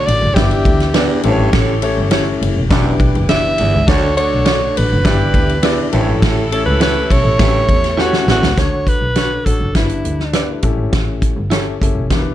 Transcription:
Already playing: D3 A3 D4 F#4 A4 C#5 D5
0.06 A1 D5, ride
0.22 F#1
0.35 G1 G2 E3 B3 D4 E4 G4 B4 D5 E5, kick, snare, ride
0.51 ride
0.65 D2, kick, ride
0.80 snare, ride
0.94 E2 D4 E4 G4 B4 D5, snare, ride
1.23 A1 G2 A2 A3 C#4 E4 G4 A4 C5 C#5, ride
1.31 C#5
1.39 G#1
1.52 A1 A2, kick, snare, ride
1.82 C#4 E4 G4 A4 C#5, ride
1.97 G1
2.11 C#4 E4 G4 A4 C#5, snare, ride
2.42 F#1, ride
2.56 E1
2.70 E1 F#2 E3 B3 D4 E4 G4 B4 D5, kick, snare, ride
3.00 B1, kick, ride
3.15 F#1, ride
3.29 D4 E4 G4 B4 D5 E5, snare, ride
3.58 G1 E2, ride
3.74 C#2
3.87 D2 D3 A3 D4 F#4 A4 C#5 D5, kick, snare, ride
4.16 D4 F#4 A4 C#5 D5, ride
4.33 B1
4.45 D4 E4 F#4 A4 C#5 D5, snare, ride
4.52 F#4
4.77 A1 B4, ride
4.92 F#1
5.04 G1 G2 E3 B3 D4 E4 G4 B4 D5, kick, snare, ride
5.34 D2, kick, ride
5.49 ride
5.63 E2 D4 E4 G4 B4 D5, snare, ride
5.92 A1 G2 A2 A3 C#4 E4 G4 A4 C5, ride
6.00 C#5
6.08 G#1
6.22 A1 A2, kick, snare, ride
6.51 C#4 E4 G4 A4 C#5, ride
6.66 C#2 B4
6.80 C#4 E4 G4 A4 B4 C#5, snare, ride
7.10 B1 C#5, kick, ride
7.24 A1
7.39 G2 A2 C4 E4 G4 A4 E5, kick, snare, ride
7.46 C#4
7.69 E2, kick, ride
7.84 snare, ride
7.97 C#4 E4 F#4 G4 A4 B4 C#5, snare
8.05 C#5
8.13 snare
8.27 A1 E2 F#4, snare
8.42 C#2, snare
8.57 D2 D3 D4 F#4 A4 C#5, kick, snare, closed hi-hat
8.87 B4, kick, closed hi-hat
9.01 B1
9.15 D4 F#4 A4 C#5, snare, closed hi-hat
9.45 A1 D4 F#4 A4 C#5, kick, closed hi-hat
9.60 F#1
9.75 G1 G2 D4 E4 G4 B4, kick, snare, closed hi-hat
9.89 closed hi-hat
10.05 D2, closed hi-hat
10.20 snare
10.33 D4 E4 G4 B4 D5, snare, closed hi-hat
10.62 A1 A2 C#4 E4 G4 A4, kick, closed hi-hat
10.77 G#1
10.93 A1, kick, snare, closed hi-hat
11.22 kick, closed hi-hat
11.37 G1
11.50 C#4 E4 G4 A4 C#5, snare, closed hi-hat
11.82 F#1 C#4 E4 G4 A4, kick, closed hi-hat
11.95 E1
12.10 E2 E3 D4 E4 G4 A#4, kick, snare, closed hi-hat
12.18 B4

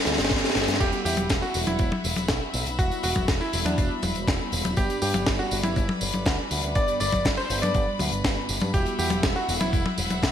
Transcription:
Already playing: G2 G3 B3 D4 G4 B4 D5 B5
0.05 D2, snare, closed hi-hat
0.12 snare
0.18 G1, snare, closed hi-hat
0.25 snare
0.30 G1, kick, snare, closed hi-hat
0.36 snare
0.44 snare
0.50 snare
0.55 G1, snare, closed hi-hat
0.62 snare
0.68 G2, snare, closed hi-hat
0.74 snare
0.80 E1 G3 B3 E4 F#4 G4 E5 F#5 B5, kick, closed hi-hat, tambourine, crash
0.92 closed hi-hat, tambourine
1.05 E2 G4, open hi-hat, tambourine
1.17 E1, closed hi-hat, high tom, tambourine
1.29 E1, kick, snare, closed hi-hat, tambourine
1.42 F#4, tambourine
1.54 E1 G3 B3 E4 F#4, open hi-hat, tambourine
1.67 E1 E4, closed hi-hat, high tom, tambourine
1.79 E1, kick, closed hi-hat, tambourine
1.92 high tom
2.04 E1, open hi-hat, tambourine
2.16 E1, closed hi-hat, high tom, tambourine
2.28 B1, kick, snare, closed hi-hat, tambourine
2.54 B1, open hi-hat, tambourine
2.66 B1, closed hi-hat, tambourine
2.79 E1 G3 B3 E4 F#4, kick, closed hi-hat, tambourine
2.91 closed hi-hat, tambourine
3.03 E1 F#4, open hi-hat, tambourine
3.16 E1, kick, closed hi-hat, high tom, tambourine
3.28 E1, kick, snare, closed hi-hat, tambourine
3.41 E4, tambourine
3.53 E1 G3 B3 E4 F#4, open hi-hat, tambourine
3.65 E2 D4, closed hi-hat, high tom, tambourine
3.78 E1, kick, closed hi-hat, tambourine
4.02 E1, open hi-hat, high tom, tambourine
4.15 E1, closed hi-hat, tambourine
4.28 E1, kick, snare, closed hi-hat, tambourine
4.52 E1, open hi-hat, tambourine
4.65 E1, closed hi-hat, high tom, tambourine
4.77 G1 G2 G3 B3 D4 G4 B4 D5, kick, closed hi-hat, tambourine
4.90 closed hi-hat, tambourine
5.02 G2 G4, open hi-hat, tambourine
5.14 G1, closed hi-hat, high tom, tambourine
5.27 G1, kick, snare, closed hi-hat, tambourine
5.39 F#4, tambourine
5.51 G1 G2 G3 B3 D4 G4, open hi-hat, tambourine
5.63 G1 E4, closed hi-hat, high tom
5.76 G1, kick, closed hi-hat, tambourine
5.89 high tom
6.01 G1, open hi-hat, tambourine
6.13 G1, closed hi-hat, high tom, tambourine
6.25 D2, kick, snare, closed hi-hat, tambourine
6.51 D2, open hi-hat, tambourine
6.62 D2, closed hi-hat, tambourine
6.75 G1 G2 G3 B3 D4 G4 D5, kick, closed hi-hat, tambourine
6.88 closed hi-hat, tambourine
7.00 G1 D5, open hi-hat, tambourine
7.12 G1, kick, closed hi-hat, high tom
7.25 G1, kick, snare, closed hi-hat, tambourine
7.37 C5, tambourine
7.50 G1 G2 G3 B3 D4 G4, open hi-hat, tambourine
7.62 G2 D5, closed hi-hat, high tom, tambourine
7.74 G1, kick, closed hi-hat, tambourine
7.99 D2, open hi-hat, high tom, tambourine
8.12 G1, closed hi-hat, tambourine
8.24 G1, kick, snare, closed hi-hat, tambourine
8.49 G1, open hi-hat, tambourine
8.60 G2, closed hi-hat, high tom, tambourine
8.74 E1 G3 B3 E4 F#4 G4 E5 F#5, kick, closed hi-hat, tambourine
8.86 closed hi-hat, tambourine
8.99 E2 G4, open hi-hat, tambourine
9.10 E1, closed hi-hat, high tom, tambourine
9.23 E1, kick, snare, closed hi-hat, tambourine
9.36 F#4, tambourine
9.48 E1 G3 B3 E4 F#4, open hi-hat, tambourine
9.60 E1 E4, closed hi-hat, high tom
9.73 E1, kick, closed hi-hat, tambourine
9.86 high tom
9.98 E1, open hi-hat, tambourine
10.10 E1, closed hi-hat, high tom, tambourine
10.23 B1, kick, snare, closed hi-hat, tambourine

